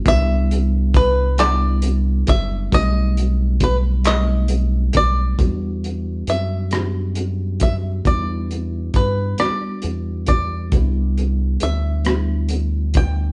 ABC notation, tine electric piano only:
X:1
M:6/8
L:1/8
Q:3/8=45
K:Em
V:1 name="Tine electric piano"
[G,B,DE]2 z [G,B,DE]2 z | [G,A,C^D]2 z [G,A,CD]2 z | [F,G,B,DF]2 z [B,DFG]2 z | [G,B,D^DE]2 z [G,B,=DF]2 z |
[G,B,DE]2 z [G,B,DE]2 z |]